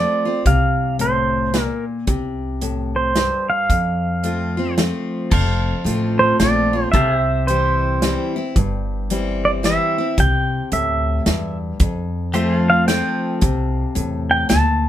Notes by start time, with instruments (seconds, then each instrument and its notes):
Already playing: steel-string acoustic guitar F3 A3 C4 F4, pedal steel guitar D5
0.25 steel-string acoustic guitar C4 F4
0.46 upright bass C2, steel-string acoustic guitar C3, pedal steel guitar F5, kick, closed hi-hat
0.99 steel-string acoustic guitar A2, pedal steel guitar C5, closed hi-hat
1.54 steel-string acoustic guitar A#2, snare, closed hi-hat
1.61 pedal steel guitar A#4
2.07 upright bass C2, steel-string acoustic guitar C3, kick, closed hi-hat
2.62 steel-string acoustic guitar A2, closed hi-hat
2.96 pedal steel guitar C5
3.16 steel-string acoustic guitar G2, snare, closed hi-hat
3.50 pedal steel guitar F5
3.70 upright bass F2, steel-string acoustic guitar F2, kick, closed hi-hat
4.23 steel-string acoustic guitar F3 A3 C4 F4, closed hi-hat
4.57 steel-string acoustic guitar C4 F4
4.78 steel-string acoustic guitar F3 A3 C4 F4, snare, closed hi-hat
5.31 upright bass F1, steel-string acoustic guitar F2, pedal steel guitar A4 C5 F5, kick, crash
5.84 upright bass A1, steel-string acoustic guitar F3 A3 C4 F4, closed hi-hat
6.19 pedal steel guitar C5
6.39 upright bass A#1, steel-string acoustic guitar F3 A3 C4 F4, pedal steel guitar D5, snare, closed hi-hat
6.73 steel-string acoustic guitar C4 F4
6.92 upright bass C2, steel-string acoustic guitar C3, pedal steel guitar A4 E5, kick, closed hi-hat
6.96 pedal steel guitar C5 F5
7.17 pedal steel guitar G4 E5
7.47 steel-string acoustic guitar E3 G3 C4 E4, pedal steel guitar C5, closed hi-hat
8.02 steel-string acoustic guitar E3 G3 C4 E4, snare, closed hi-hat
8.36 steel-string acoustic guitar C4 E4
8.56 upright bass G1, steel-string acoustic guitar G2, kick, closed hi-hat
9.10 steel-string acoustic guitar E3 G3 C4 E4, closed hi-hat
9.45 pedal steel guitar D5
9.63 steel-string acoustic guitar E3 G3 C4 E4, pedal steel guitar E5, snare, closed hi-hat
9.98 steel-string acoustic guitar C4 E4
10.18 upright bass C2, steel-string acoustic guitar C3, pedal steel guitar G5, kick, closed hi-hat
10.72 upright bass D2, steel-string acoustic guitar A2, pedal steel guitar E5, closed hi-hat
11.26 upright bass E2, steel-string acoustic guitar G2, snare, closed hi-hat
11.80 upright bass F2, steel-string acoustic guitar F2, kick, closed hi-hat
12.33 steel-string acoustic guitar F3 A3 C4 F4, pedal steel guitar G4 C5 E5, closed hi-hat
12.56 pedal steel guitar A4 F5
12.70 pedal steel guitar F5
12.88 steel-string acoustic guitar F3 A3 C4 F4, pedal steel guitar G5, snare, closed hi-hat
13.41 upright bass C2, steel-string acoustic guitar C3, kick, closed hi-hat
13.95 upright bass E2, steel-string acoustic guitar A2, closed hi-hat
14.31 pedal steel guitar G5
14.49 upright bass D2, steel-string acoustic guitar A#2, pedal steel guitar A5, snare, closed hi-hat